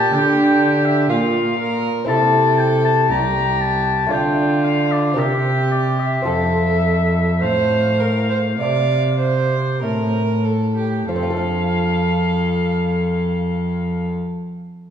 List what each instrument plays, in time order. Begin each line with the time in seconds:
Already playing: cello A#2, lute A#3 F4 D5, violin G4, oboe A5
0.12 lute D3, cello D3, oboe G5
0.85 oboe E5
1.09 lute A#2, cello A#2, violin F4, oboe F5
1.59 violin A#4
2.04 lute C4 E4 E5, violin A4
2.09 lute C3, cello C3, oboe A5
2.59 oboe G5
2.85 oboe A5
3.09 cello C2, violin G4, oboe A#5
3.61 oboe A5
4.07 lute A3 F4 D5
4.11 lute D3, cello D3, violin F4, oboe G5
4.64 oboe F5
4.92 oboe D5
5.14 cello C3, lute C3 C4 G4 A#4, violin G4
5.19 oboe E5
5.71 oboe D5
6.00 oboe E5
6.22 lute C4 F4 A4, violin A4
6.27 lute F2, cello F2, oboe E5
7.41 lute A2, cello A2, violin C5, oboe F5
8.00 violin A#4
8.29 violin C5
8.58 cello C3, lute C3, violin D5
9.19 violin C5
9.82 cello A2, lute A2, violin A#4
10.44 violin A4
10.76 violin G4
11.08 cello F2, lute F3, violin A4, oboe F5
11.16 lute C4
11.23 lute F4
11.30 lute A4
11.37 lute F5